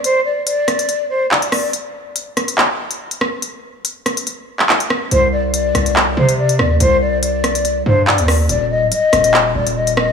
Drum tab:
HH |x---x-xxx----xo-|x---x-xx---x-x--|x---x-xxx----x--|x---x-xx---x-x--|
CP |------------x---|--------x-------|-----------xx---|--------x-------|
SD |------r-------r-|------r-------r-|------r-------r-|------r-------r-|

HH |x---x-xxx----xo-|x---x-xx---x-x--|
CP |------------x---|--------x-------|
SD |------r-------r-|------r-------r-|